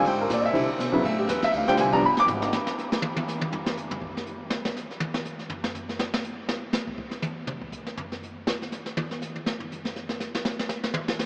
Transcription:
0.05 G#2 G5, kick, ride
0.21 A#4
0.30 A#2 D5, kick, snare, hi-hat pedal, ride
0.41 D#5, ride
0.46 E5
0.53 C3 D3 G3 C4 E4, kick, ride
0.68 muted upright bass stroke
0.79 B2, kick, snare, hi-hat pedal, ride
0.92 C#3 F#3 B3 E4
1.03 A2 E5, kick, ride
1.19 G4
1.28 E2 B4, kick, snare, hi-hat pedal, ride
1.42 E5, snare, ride
1.52 D2 E5, kick, ride
1.57 F5
1.68 D3 G3 C4 F4 G5, snare
1.77 C2 G5 G#5, kick, snare, hi-hat pedal, ride
1.92 F3 G3 B3 D4 A#5, ride
2.02 G1 B5
2.17 D6, snare
2.26 G#1, hi-hat pedal, mid tom
2.42 snare
2.53 snare
2.67 snare
2.78 snare, hi-hat pedal
2.92 snare
3.02 high tom
3.16 high tom
3.28 snare, hi-hat pedal
3.41 high tom
3.52 floor tom
3.66 snare
3.77 floor tom, hi-hat pedal
3.91 floor tom
4.02 kick
4.17 snare
4.26 hi-hat pedal
4.50 snare
4.65 snare
4.76 snare, hi-hat pedal
4.91 snare
5.00 high tom
5.14 snare
5.25 snare, hi-hat pedal
5.39 snare
5.50 floor tom
5.64 snare
5.75 floor tom, hi-hat pedal
5.89 snare
5.99 snare
6.14 snare
6.24 hi-hat pedal
6.49 snare
6.73 snare, hi-hat pedal
6.87 kick
6.98 kick
7.11 snare
7.22 hi-hat pedal, high tom
7.47 mid tom
7.62 kick
7.72 kick, hi-hat pedal
7.87 snare
7.97 floor tom
8.12 snare
8.23 hi-hat pedal
8.47 snare
8.62 snare
8.72 snare, hi-hat pedal
8.86 snare
8.97 high tom
9.11 snare
9.22 snare, hi-hat pedal
9.36 high tom
9.46 snare
9.60 floor tom
9.72 floor tom, hi-hat pedal
9.85 snare
9.96 snare
10.09 snare
10.20 snare, hi-hat pedal
10.35 snare
10.45 snare
10.59 snare
10.69 snare, hi-hat pedal
10.84 snare
10.94 high tom
11.08 snare
11.19 snare, hi-hat pedal

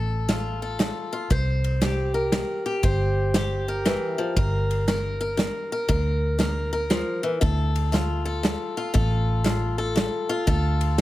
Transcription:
Already playing: A1 D3 A4
0.29 A3 F4, snare, ride
0.62 A4
0.79 A3, snare, ride
1.13 F4
1.30 C2 C3 C5, kick, ride
1.64 ride
1.81 G3 G4, snare, ride
2.14 A#4
2.32 G3, snare, ride
2.66 G4
2.83 G1 C3 C5, kick, ride
3.34 G3 G4, snare, ride
3.68 A#4
3.85 E3, snare, ride
4.18 F3
4.36 G1 G3 A#4, kick, ride
4.71 ride
4.88 D4 A#4, snare, ride
5.21 A#4
5.37 D4, snare, ride
5.72 A#4
5.89 D2 G3 A#4, kick, ride
6.39 D4 A#4, snare, ride
6.73 A#4
6.90 F3, snare, ride
7.23 E3
7.41 D2 D3 A4, kick, ride
7.76 ride
7.92 A3 F4, snare, ride
8.25 A4
8.43 A3, snare, ride
8.77 F4
8.94 A1 D3 A4, kick, ride
9.44 A3 F4, snare, ride
9.78 A4
9.96 A3, snare, ride
10.29 F4
10.47 D2 D3 A4, kick, ride
10.81 ride

